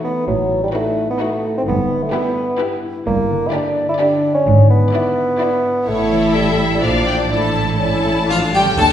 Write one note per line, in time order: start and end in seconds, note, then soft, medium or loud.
0.00 0.30 E3 soft
0.00 3.01 B3 soft
0.00 0.27 B3 medium
0.00 0.16 D#4 medium
0.00 0.16 F#4 medium
0.00 1.20 F#4 soft
0.00 0.16 B4 soft
0.00 0.97 B4 soft
0.04 0.73 D#4 soft
0.27 0.65 A1 medium
0.27 0.65 A2 medium
0.27 1.70 A2 medium
0.27 0.62 F#3 medium
0.51 1.69 A3 soft
0.63 0.68 G3 medium
0.73 1.09 A3 medium
0.73 1.09 D#4 medium
0.73 1.43 D#4 soft
0.73 1.09 F#4 medium
0.73 1.09 B4 medium
0.98 2.36 B4 soft
1.10 1.23 B3 medium
1.20 1.56 A3 medium
1.20 1.55 D#4 medium
1.20 1.55 F#4 medium
1.20 1.69 F#4 soft
1.20 1.56 B4 medium
1.44 1.70 D#4 soft
1.57 1.62 C4 medium
1.67 2.05 G1 medium
1.67 2.04 G2 medium
1.67 3.05 G2 medium
1.67 2.05 B3 medium
1.90 4.48 G3 soft
2.03 2.13 A3 medium
2.13 2.59 B3 medium
2.13 2.48 E4 medium
2.13 2.82 E4 soft
2.13 2.48 G4 medium
2.13 2.48 B4 medium
2.37 3.09 B4 medium
2.59 2.95 E4 medium
2.59 2.94 G4 medium
2.59 3.99 G4 medium
2.59 2.94 B4 medium
2.84 3.09 E4 soft
3.06 3.44 G1 medium
3.06 4.49 G2 medium
3.06 3.44 G2 medium
3.06 3.49 A#3 medium
3.30 4.49 D3 soft
3.47 3.55 E4 medium
3.53 4.22 D4 soft
3.53 3.88 D4 medium
3.53 3.88 G4 medium
3.53 3.88 D5 medium
3.77 5.90 D5 medium
3.89 3.94 E4 medium
3.99 4.35 D4 medium
3.99 4.34 D4 medium
3.99 4.35 G4 medium
3.99 4.49 G4 medium
3.99 4.34 D5 medium
4.24 4.92 D4 soft
4.34 4.69 C#4 medium
4.47 4.84 G#1 medium
4.47 5.90 G#2 medium
4.47 4.84 G#2 medium
4.70 5.89 G#3 soft
4.70 5.90 B3 medium
4.93 5.63 D4 soft
4.93 5.29 E4 medium
4.93 5.28 D5 medium
5.17 6.58 E5 soft
5.40 5.76 E4 medium
5.40 6.85 E4 soft
5.40 5.76 D5 medium
5.64 5.90 D4 soft
5.87 6.79 A1 medium
5.87 6.79 A2 medium
5.87 6.85 A2 medium
5.87 6.34 A3 medium
5.87 6.78 E4 medium
5.87 6.79 A4 medium
5.87 6.31 C#5 medium
6.12 6.85 E3 soft
6.34 6.74 G3 medium
6.34 6.85 C#4 soft
6.34 6.82 E5 soft
6.59 6.85 E5 soft
6.75 6.83 G3 soft
6.82 7.31 A#1 medium
6.82 7.31 A#2 soft
6.82 7.34 A#2 medium
6.82 7.29 F3 medium
6.82 7.31 D4 soft
6.82 7.31 D5 medium
6.82 7.07 F5 soft
7.07 7.33 F4 soft
7.07 7.34 D5 soft
7.07 7.15 G5 soft
7.30 8.55 A1 medium
7.30 8.81 A2 soft
7.30 8.56 A2 soft
7.30 7.81 D4 medium
7.30 7.79 E4 soft
7.30 7.79 A4 soft
7.30 7.79 A5 soft
7.56 8.81 E3 soft
7.80 8.53 A3 soft
7.80 8.29 C#4 medium
7.80 8.26 E4 medium
7.80 8.29 A4 soft
7.80 8.56 A5 soft
8.05 8.81 E5 soft
8.29 8.41 F3 medium
8.29 8.54 D4 medium
8.29 8.53 F4 medium
8.29 8.68 A4 soft
8.29 8.37 F5 medium
8.29 8.36 F5 medium
8.53 8.64 G3 medium
8.53 8.64 A3 soft
8.53 8.78 C#4 soft
8.53 8.77 G4 medium
8.53 8.60 G5 medium
8.53 8.78 G5 medium
8.61 8.93 D3 soft
8.65 8.93 A3 soft
8.69 8.93 A4 soft
8.74 8.89 A4 medium
8.74 8.93 D5 soft
8.78 8.93 D2 medium
8.78 8.93 A3 medium
8.78 8.85 A3 medium
8.78 8.93 D4 medium
8.78 8.84 A5 medium
8.78 8.91 A5 medium